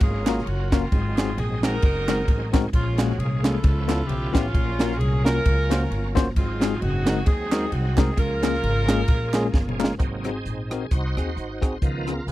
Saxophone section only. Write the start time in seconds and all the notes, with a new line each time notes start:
Already playing: A#3
0.02 C#4 F4 G#4
0.47 F#4
0.73 C4 F4
1.38 G#4
1.64 D#4 F#4 A#4
2.74 G#3 C#4 F4
3.00 F#4
3.18 G#4
3.43 E4 F4 A4
4.07 G4
4.33 C#4 F4
4.98 G#4
5.24 C#4 F4 A#4
6.37 C4 F4
6.81 C4 D#4 F#4
7.26 C4 D#4 G#4
7.73 F#4
7.98 G#4
8.19 F4 A#4